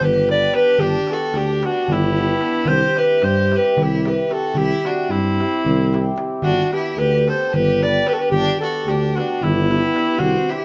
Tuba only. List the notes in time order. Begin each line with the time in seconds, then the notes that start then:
0.01 G1
0.78 G1
1.33 D2
1.88 G1
2.66 C2
3.23 G2
3.77 C2
4.54 C2
5.09 G2
5.65 C2
6.42 G1
6.97 D2
7.53 G1
8.30 G1
8.86 D2
9.41 G1
10.18 C2